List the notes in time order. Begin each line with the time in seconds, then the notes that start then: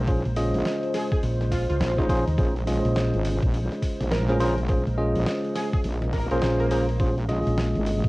Already playing: A#1 C#3 G#3 C5
0.07 C#4 F4 G#4 C5, kick, open hi-hat
0.25 A#1, open hi-hat
0.36 C#4 F4 G#4 D#5, open hi-hat
0.54 A#1, open hi-hat
0.65 snare, open hi-hat
0.83 open hi-hat
0.94 G#4, snare, open hi-hat
1.12 G#4, kick, open hi-hat
1.23 A#1, open hi-hat
1.41 snare, open hi-hat
1.51 F4, kick, snare, open hi-hat
1.69 C#2 F4, open hi-hat
1.80 A#1 F4, snare, open hi-hat
1.98 C#4 D#4 F4 G#4 C5, kick, open hi-hat
2.09 C#4 F4 G#4 C5, kick, open hi-hat
2.27 D#2, open hi-hat
2.38 A#1 C#4 F4 G#4 C5, kick, open hi-hat
2.56 open hi-hat
2.67 C#4 F4 G#4 D#5, open hi-hat
2.85 A#1, open hi-hat
2.96 snare, open hi-hat
3.14 G#1, open hi-hat
3.25 open hi-hat
3.43 A#1, kick, open hi-hat
3.54 open hi-hat
3.72 snare, open hi-hat
3.82 kick, open hi-hat
4.00 A#1, snare, open hi-hat
4.11 A#4, snare, open hi-hat
4.29 C#4 F4 G#4 A#4 C5, open hi-hat
4.40 C#4 F4 G#4 A#4 C5, snare, open hi-hat
4.58 open hi-hat
4.69 C#4 F4 G#4 C5, kick, open hi-hat
4.87 A#1, open hi-hat
4.98 C#4 F4 G#4 D#5
5.15 A#1, open hi-hat
5.26 snare, open hi-hat
5.44 open hi-hat
5.55 G#4, snare, open hi-hat
5.73 G#4, kick, open hi-hat
5.84 A#1, open hi-hat, swell
6.02 snare
6.13 A#4, kick, snare, open hi-hat
6.31 A#1 C#4 F4 G#4 A#4 C5, open hi-hat
6.42 A#1, snare, open hi-hat
6.60 A#4, open hi-hat
6.71 C#4 F4 G#4 A#4 C5, open hi-hat
6.89 open hi-hat
7.00 A#1 A#3 C#4 F4 G#4 C5, kick, open hi-hat
7.18 open hi-hat
7.29 C#4 F4 G#4 D#5, open hi-hat
7.47 A#1, open hi-hat
7.58 snare, open hi-hat
7.75 G#1, open hi-hat
7.86 open hi-hat
8.04 A#1, kick, open hi-hat